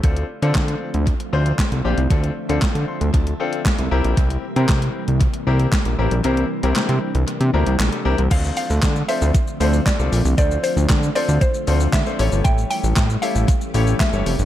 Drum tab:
CC |----------------|----------------|----------------|----------------|
HH |xx-xxx-xxx-xxx-x|xx-xxx-xxx-xxx-x|xx-xxx-xxx-xxx-x|xx-xxx-xxx-xxx-x|
SH |----------------|----------------|----------------|----------------|
CP |----x-------x---|----x-------x---|----x-------x---|----x-------x---|
SD |----o-------o---|----o-------o---|----o-------o---|----o-------o---|
BD |o---o---o---o---|o---o---o---o---|o---o---o---o---|----------------|

CC |x---------------|----------------|----------------|
HH |x-o-x-o-x-o-x-o-|x-o-x-o-x-o-x-o-|x-o-x-o-x-o-x-o-|
SH |xxxxxxxxxxxxxxxx|xxxxxxxxxxxxxxxx|xxxxxxxxxxxxxxxx|
CP |----x-------x---|----x-------x---|----x-------x---|
SD |----o-------o---|----o-------o---|----o-------o---|
BD |o---o---o---o---|o---o---o---o---|o---o---o---o---|